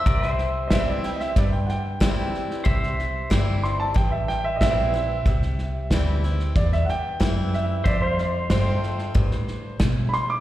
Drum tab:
HH |----p-------p---|----p-------p---|----p-------p---|----p-------p---|
SD |ooo-o-ooo-o-o-oo|ooo-o-o-o-o-o-o-|ooo-o-ooooo-o-o-|o-o-o-ooooo-o-o-|
BD |o---o---o---o---|o---o---o---o---|o---o---o---o---|o---o---o---o---|